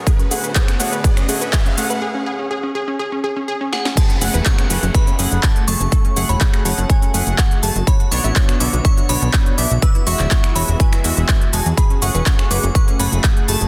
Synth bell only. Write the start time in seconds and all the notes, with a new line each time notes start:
3.73 F#5
3.97 A5
4.46 C#6
4.95 B5
5.43 A5
5.68 C#6
6.29 B5
6.65 A5
6.90 G#5
7.39 F#5
7.63 A5
7.87 B5
8.11 C#6
8.60 D6
8.85 C#6
9.09 B5
9.58 D6
9.82 E6
10.07 C#6
10.55 B5
10.80 G#5
11.53 A5
11.78 B5
12.02 C#6
12.51 D6
12.75 C#6
13.00 B5
13.48 A5